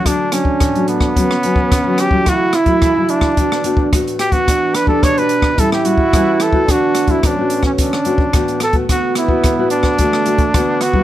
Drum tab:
HH |x-x-xxx-x-x-x-x-|x-xxx-x-x-x-xxxx|x-x-xxx-x-x-x-x-|x-xxx-x-x-x-xxxx|
SD |r-r-r--r-r--r-r-|r-r-r--r-r--r-r-|r-r-r--r-r--r-r-|r-r-r--r-r--r-r-|
BD |o--oo--oo--oo--o|o--oo--oo--oo--o|o--oo--oo--oo--o|o--oo--oo--oo--o|

HH |x-x-x-x-x-xxx-x-|
SD |r-r-r--r-r--r-r-|
BD |o--oo--oo--oo--o|